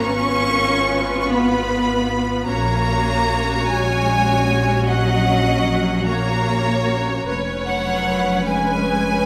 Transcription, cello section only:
0.05 C#4
1.29 B3
2.48 A#3
3.69 G#3
4.88 F#3
6.06 A#3
7.67 F#3
8.48 G#3

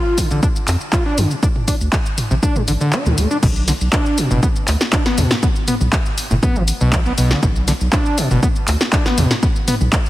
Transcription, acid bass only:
Already playing: F4
0.18 D3
0.31 D3
0.43 D4
0.93 F4
1.06 D4
1.18 D3
1.31 C3
1.43 D4
1.68 D4
2.31 C3
2.43 D4
2.56 G3
2.68 D3
2.81 D3
2.93 D4
3.06 D3
3.18 A3
3.31 D4
3.43 B2
3.68 D3
3.93 D4
4.18 B2
4.31 B2
4.43 B3
4.93 D4
5.06 B3
5.18 B2
5.31 A2
5.43 B3
5.68 B3
6.31 A2
6.43 B3
6.56 E3
6.81 B2
6.93 F#3
7.06 B3
7.18 B2
7.31 D3
7.43 B2
7.68 D3
7.93 D4
8.18 B2
8.31 B2
8.43 B3
8.93 D4
9.06 B3
9.18 B2
9.31 A2
9.43 B3
9.68 B3

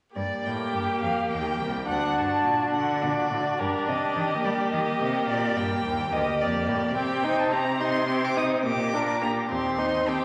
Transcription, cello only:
0.16 G2
0.45 A2
0.73 G2
1.03 F2
1.31 D#2
1.61 C2
1.89 D2
2.18 G2
2.46 A#2
2.74 D3
3.02 A#2
3.31 A2
3.60 G2
3.88 C3
4.16 D#3
4.44 G3
4.73 D#3
5.00 C3
5.28 A#2
5.56 G2
5.85 D#2
6.12 D2
6.40 F2
6.68 A2
6.96 C3
8.65 A#2
9.50 D#2

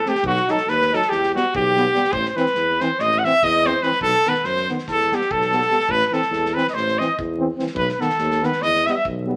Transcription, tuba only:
0.24 B1
0.67 D#2
1.10 E2
1.55 B1
2.12 A1
2.56 E2
3.00 A1
3.43 E2
4.01 B1
4.44 F#2
4.89 E2
5.32 B1
5.88 A1
6.31 E2
6.74 A1
7.19 E2
7.75 B1
8.19 D#2
8.62 E2
9.05 B1

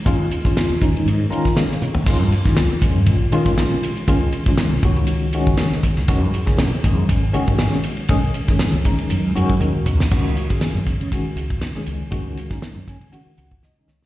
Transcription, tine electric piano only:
0.06 D#3 G#3 C#4 F4
0.20 C#4 F4
0.33 C#4 D#4
0.45 D#3 G#3 C#4 F4
0.81 D#3 G#3 C#4 D#4
1.30 D#3 G#3 C#4 F4 A#5
1.56 D#3 G#3 C#4 G#4 F5
1.83 C#4 F4 C#5
2.07 D#3 G#3 C#4 F4
2.21 C#4 G#4
2.34 C#4 F4
2.46 D#3 G#3 C#4 F4
2.82 D#3 G#3 C#4 F4
3.32 D#3 G#3 C#4 F4
3.58 D#3 G#3 C#4 F4
3.82 C#4 G4
4.08 D#3 G#3 C#4 F4
4.22 C#4 G#4
4.34 C#4 G#4
4.48 D#3 G#3 C#4 F4
4.85 D#3 G#3 C#4 F#4
5.34 D#3 G#3 C#4 F#4
5.59 D#3 G#3 C#4 G#4
5.84 C#4 G#4
6.09 D#3 G#3 C#4 F#4
6.23 C#4 D#4
6.33 C#4 G#4
6.46 D#3 G#3 C#4 G#4
6.85 D#3 G#3 C#4 G#4
7.33 D#3 G#3 C#4 F#4
7.59 D#3 G#3 C#4 G#4
7.86 C#4 F#4
8.10 D#3 G#3 C#4 G#4
8.25 C#4 D#4
8.37 C#4 D#4
8.50 D#3 G#3 C#4 G#4
8.85 D#3 G#3 C#4 D#4
9.35 D#3 G#3 C#4 F#4
9.61 D#3 G#3 C#4 F#4
9.86 C#4 D#4
10.11 D#3 G#3 C#4 F#4
10.51 D#3 G#3 C#4 G#4
10.87 C#4 D#4
11.13 D#3 G#3 C#4 F#4
11.38 C#4 G#4
11.76 D#3 G#3 C#4 G#4
12.11 D#3 G#3 C#4 F#4
12.50 D#3 G#3 C#4 D#4
12.88 C#4 D#4 G#5
13.12 D#3 G#3 C#4 F#4 F#5
13.37 C#4 F#4 F#5
13.64 D#5
13.78 D#3 G#3 C#4 D#4
13.90 C#5

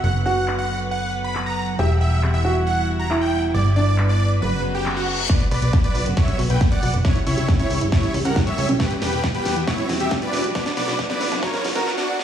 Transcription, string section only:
Already playing: B3 F#5
0.04 D3 F#3 B4
1.79 E3 G3 E4
3.54 D3 B3 B4
4.42 C#3 F#3 F#4
5.29 D3 F#3 B3 F#4 B4
7.05 C#3 E3 G3 E4 G4
8.80 B3 F#4
10.55 D3 F#3 B3 F#4 B4

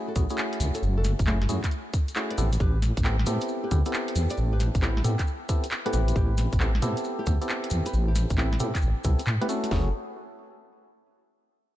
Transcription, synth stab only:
Already playing: A3 C#4 E4 F#4 G#4
0.16 A3 C#4 E4 F#4 G#4
0.31 A3 C#4 E4 F#4 G#4
1.27 A3 C#4 E4 F#4 G#4
1.49 A3 C#4 E4 F#4 G#4
2.16 A3 C#4 E4 F#4 G#4
2.38 B3 C4 E4 G4 A4
3.05 B3 C4 E4 G4 A4
3.27 B3 C4 E4 G4 A4
3.71 B3 C4 E4 G4 A4
3.86 B3 C4 E4 G4 A4
4.82 B3 C4 E4 G4 A4
5.04 B3 C4 E4 G4 A4
5.49 B3 C4 E4 G4 A4
5.86 B3 C4 E4 G4 B4
5.93 B3 C4 E4 G4 B4
6.60 B3 C4 E4 G4 A4
6.82 B3 C4 E4 G4 A4
7.27 B3 C4 E4 G4 A4
7.41 B3 C4 E4 G4 A4
8.38 B3 C4 E4 G4 A4
8.60 B3 C4 E4 G4 A4
9.04 B3 C4 E4 G4 A4
9.41 B3 C4 E4 G4 B4
9.49 A3 C#4 E4 F#4 A4
9.71 A3 C#4 E4 F#4 G#4

